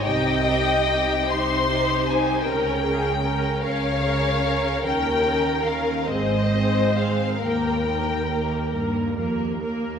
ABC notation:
X:1
M:6/8
L:1/16
Q:3/8=48
K:Ebmix
V:1 name="Violin section"
g6 c'4 a2 | g6 f6 | g4 f2 e4 f2 | g6 z6 |]
V:2 name="Violin section"
e6 c6 | B2 A2 B2 d6 | B6 c6 | B8- B z3 |]
V:3 name="Viola section"
[EG]2 [EG]2 [EG]2 [EG]2 [EG]2 [EG]2 | [DB]2 [DB]2 [DB]2 [DB]2 [DB]2 [DB]2 | [DB]2 [DB]2 [DB]2 [CA]2 [CA]2 [CA]2 | [B,B]2 [B,B]2 [B,B]2 [B,B]2 [B,B]2 [B,B]2 |]
V:4 name="Cello section" clef=bass
C,6 C,6 | D,6 D,6 | E,6 A,,6 | E,,6 G,,2 F,,2 E,,2 |]
V:5 name="Double bass section" clef=bass
C,,6 C,,6 | D,,6 D,,6 | E,,6 A,,,6 | E,,6 E,,6 |]